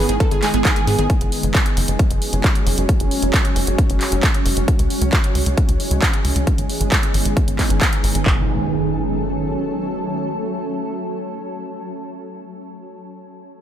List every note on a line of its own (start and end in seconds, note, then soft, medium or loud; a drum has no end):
0.00 1.08 D#3 medium
0.00 4.64 G#3 medium
0.00 1.08 B3 medium
0.00 2.85 G#4 medium
0.09 0.18 G#1 medium
0.09 0.13 D#3 medium
0.09 0.18 G#4 medium
0.09 closed hi-hat medium
0.20 0.27 D#3 medium
0.20 0.29 A4 medium
0.20 kick loud
0.20 closed hi-hat medium
0.31 0.41 G#1 medium
0.31 0.41 G#4 medium
0.31 closed hi-hat medium
0.43 0.50 G#3 loud
0.43 0.52 G#4 medium
0.43 clap medium
0.43 open hi-hat loud
0.54 0.63 G#1 medium
0.54 0.58 B3 medium
0.54 0.63 G#4 medium
0.54 closed hi-hat medium
0.65 0.72 D#3 medium
0.65 0.74 G#4 medium
0.65 kick loud
0.65 clap loud
0.65 closed hi-hat medium
0.76 0.81 D#3 medium
0.76 0.85 G#4 medium
0.76 closed hi-hat medium
0.87 0.97 G#2 medium
0.87 0.95 B3 medium
0.87 0.97 G#4 medium
0.87 open hi-hat loud
0.99 1.08 G#1 medium
0.99 1.03 D#3 medium
0.99 1.08 G#4 medium
0.99 closed hi-hat medium
1.10 4.64 F#3 medium
1.10 6.43 C#4 medium
1.10 kick loud
1.10 closed hi-hat medium
1.21 1.30 F#1 medium
1.21 closed hi-hat medium
1.32 open hi-hat loud
1.43 1.53 F#1 medium
1.43 closed hi-hat medium
1.55 kick loud
1.55 clap loud
1.55 closed hi-hat medium
1.66 closed hi-hat medium
1.77 1.86 F#1 loud
1.77 open hi-hat loud
1.88 1.98 F#1 medium
1.88 closed hi-hat medium
1.99 kick loud
1.99 closed hi-hat medium
2.11 2.20 F#1 medium
2.11 closed hi-hat medium
2.22 open hi-hat loud
2.33 2.42 F#1 medium
2.33 closed hi-hat medium
2.44 kick loud
2.44 clap loud
2.44 closed hi-hat medium
2.55 closed hi-hat medium
2.66 2.76 F#1 medium
2.66 open hi-hat medium
2.78 2.87 F#1 medium
2.78 closed hi-hat medium
2.89 4.66 F#4 medium
2.89 kick loud
2.89 closed hi-hat medium
3.00 3.10 F#1 medium
3.00 closed hi-hat medium
3.11 open hi-hat loud
3.23 3.32 F#1 medium
3.23 closed hi-hat medium
3.34 kick loud
3.34 clap loud
3.34 closed hi-hat medium
3.45 closed hi-hat medium
3.56 3.66 F#1 medium
3.56 open hi-hat loud
3.67 3.77 F#1 medium
3.67 closed hi-hat medium
3.78 kick loud
3.78 closed hi-hat medium
3.90 3.99 F#1 medium
3.90 closed hi-hat medium
4.01 clap medium
4.01 open hi-hat loud
4.12 4.21 F#1 medium
4.12 closed hi-hat medium
4.23 kick loud
4.23 clap loud
4.23 closed hi-hat medium
4.34 closed hi-hat medium
4.46 4.55 F#1 medium
4.46 open hi-hat medium
4.57 4.66 F#1 medium
4.57 closed hi-hat medium
4.68 6.45 E3 medium
4.68 8.23 G#3 medium
4.68 6.45 G#4 medium
4.68 kick loud
4.68 closed hi-hat medium
4.79 4.89 C#2 medium
4.79 closed hi-hat medium
4.90 open hi-hat medium
5.02 5.11 C#2 medium
5.02 closed hi-hat medium
5.13 kick loud
5.13 clap loud
5.13 closed hi-hat medium
5.24 closed hi-hat medium
5.35 5.45 C#2 medium
5.35 open hi-hat medium
5.46 5.56 C#2 medium
5.46 closed hi-hat medium
5.57 kick loud
5.57 closed hi-hat medium
5.69 5.78 C#2 medium
5.69 closed hi-hat medium
5.80 open hi-hat medium
5.91 6.01 C#2 medium
5.91 closed hi-hat medium
6.02 kick loud
6.02 clap loud
6.02 closed hi-hat medium
6.13 closed hi-hat medium
6.25 6.34 C#2 medium
6.25 open hi-hat medium
6.36 6.45 C#2 medium
6.36 closed hi-hat medium
6.47 8.24 D#3 medium
6.47 8.24 B3 medium
6.47 8.24 G#4 medium
6.47 kick loud
6.47 closed hi-hat medium
6.58 6.68 G#1 medium
6.58 closed hi-hat medium
6.70 open hi-hat medium
6.81 6.90 G#1 medium
6.81 closed hi-hat medium
6.92 kick loud
6.92 clap loud
6.92 closed hi-hat medium
7.03 closed hi-hat medium
7.14 7.24 G#1 medium
7.14 open hi-hat medium
7.25 7.35 G#1 medium
7.25 closed hi-hat medium
7.37 kick loud
7.37 closed hi-hat medium
7.48 7.57 G#1 medium
7.48 closed hi-hat medium
7.59 kick soft
7.59 clap medium
7.59 open hi-hat loud
7.70 7.80 G#1 medium
7.70 closed hi-hat medium
7.81 kick loud
7.81 clap loud
7.81 closed hi-hat medium
7.93 closed hi-hat medium
8.04 8.13 G#1 medium
8.04 open hi-hat medium
8.15 8.24 G#1 medium
8.15 closed hi-hat medium
8.26 9.57 F#1 medium
8.26 11.69 F#3 medium
8.26 11.69 A3 medium
8.26 11.69 C#4 medium
8.26 11.69 A4 medium
8.26 kick medium
8.26 clap medium
8.26 impact medium